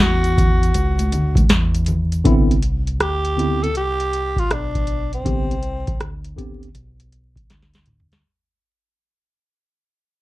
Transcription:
Already playing: tenor saxophone F#4
0.00 fingered electric bass E2, snare, closed hi-hat, high conga, shaker
0.24 closed hi-hat, shaker
0.38 kick, closed hi-hat, low conga, shaker
0.63 closed hi-hat, shaker
0.74 fingered electric bass C#2, closed hi-hat, shaker
0.99 closed hi-hat, high conga, shaker
1.12 fingered electric bass D2, closed hi-hat, low conga, shaker
1.35 kick, closed hi-hat, high conga, shaker
1.49 fingered electric bass E2, snare, closed hi-hat, shaker
1.75 closed hi-hat, shaker
1.86 closed hi-hat, low conga, shaker
2.12 closed hi-hat, shaker
2.24 fingered electric bass C2, tine electric piano D3 B3 C4 E4, kick, closed hi-hat
2.51 closed hi-hat
2.62 closed hi-hat
2.87 closed hi-hat
3.00 fingered electric bass D2, tenor saxophone G4, cross-stick, closed hi-hat
3.25 closed hi-hat
3.36 tine electric piano D3 B3 C4 E4, closed hi-hat
3.63 tenor saxophone A4, closed hi-hat
3.75 fingered electric bass C2, tenor saxophone G4, closed hi-hat
4.00 closed hi-hat
4.13 closed hi-hat
4.36 tenor saxophone F4, kick, closed hi-hat
4.50 fingered electric bass B1, tenor saxophone D4, cross-stick, closed hi-hat
4.75 kick, closed hi-hat
4.87 closed hi-hat
5.13 tenor saxophone C4, closed hi-hat
5.24 fingered electric bass C2, tine electric piano D3 B3 C4 G4, kick, closed hi-hat
5.51 closed hi-hat
5.63 closed hi-hat
5.87 kick, closed hi-hat
6.00 fingered electric bass D2, cross-stick, closed hi-hat
6.24 closed hi-hat
6.36 tine electric piano D3 B3 C4 G4, kick, closed hi-hat
6.63 closed hi-hat
6.75 fingered electric bass B1, closed hi-hat
7.00 closed hi-hat
7.12 closed hi-hat
7.36 kick, closed hi-hat
7.50 fingered electric bass D2, snare, closed hi-hat
7.62 snare
7.74 snare, closed hi-hat
7.86 closed hi-hat, mid tom
8.00 floor tom
8.12 snare, closed hi-hat

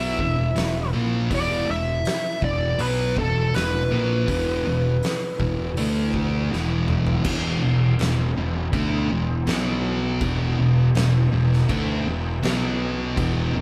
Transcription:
Already playing: fingered electric bass B1, distorted electric guitar B2 F#3 B3, synth drone E4, lead electric guitar E5
0.19 fingered electric bass E1, distorted electric guitar E2 B2, kick
0.55 fingered electric bass E1, distorted electric guitar E2 B2, snare, open hi-hat
0.93 fingered electric bass A#1, distorted electric guitar A#2 F3 A#3
1.30 fingered electric bass E1, distorted electric guitar E2 B2 E3, kick, open hi-hat
1.35 lead electric guitar D5
1.68 fingered electric bass E1, distorted electric guitar E2 B2, lead electric guitar E5
2.05 snare, open hi-hat
2.42 fingered electric bass E1, distorted electric guitar E2 B2, lead electric guitar D5, kick
2.78 fingered electric bass B1, distorted electric guitar B2 F#3 B3, lead electric guitar B4, open hi-hat
3.16 fingered electric bass E1, distorted electric guitar E2 B2, lead electric guitar A4, kick
3.53 fingered electric bass E1, distorted electric guitar E2 B2, lead electric guitar B4, snare, open hi-hat
3.91 fingered electric bass A#1, distorted electric guitar A#2 F3 A#3
4.27 fingered electric bass E1, distorted electric guitar E2 B2 E3, kick, open hi-hat
4.65 fingered electric bass E1, distorted electric guitar E2 B2
5.03 snare, open hi-hat
5.40 fingered electric bass E1, distorted electric guitar E2 B2, kick
5.77 fingered electric bass D2, distorted electric guitar D3 A3 D4, open hi-hat
6.14 kick
6.52 fingered electric bass E1, distorted electric guitar E2 B2 E3, snare
6.88 mid tom
7.07 floor tom
7.25 fingered electric bass E1, distorted electric guitar E2 B2 E3, synth drone E3 B3 E4, kick, crash
7.62 fingered electric bass E1, distorted electric guitar E2 B2
7.99 fingered electric bass E1, distorted electric guitar E2 B2, snare, crash
8.36 fingered electric bass E1, distorted electric guitar E2 B2
8.73 fingered electric bass D2, distorted electric guitar D3 A3 D4, kick, crash
9.10 fingered electric bass E1, distorted electric guitar E2 B2
9.46 fingered electric bass B1, distorted electric guitar B2 F#3 B3, synth drone B4, snare, crash
10.21 fingered electric bass E1, distorted electric guitar E2 B2 E3, synth drone E4 E5, kick, crash
10.58 fingered electric bass E1, distorted electric guitar E2 B2
10.95 fingered electric bass E1, distorted electric guitar E2 B2, snare, crash
11.33 fingered electric bass E1, distorted electric guitar E2 B2
11.53 snare
11.69 fingered electric bass D2, distorted electric guitar D3 A3 D4, kick, crash
12.06 fingered electric bass E1, distorted electric guitar E2 B2
12.43 fingered electric bass B1, distorted electric guitar B2 F#3 B3, snare, crash
13.17 fingered electric bass E1, distorted electric guitar E2 B2 E3, synth drone E4 E5, kick, crash
13.54 fingered electric bass E1, distorted electric guitar E2 B2

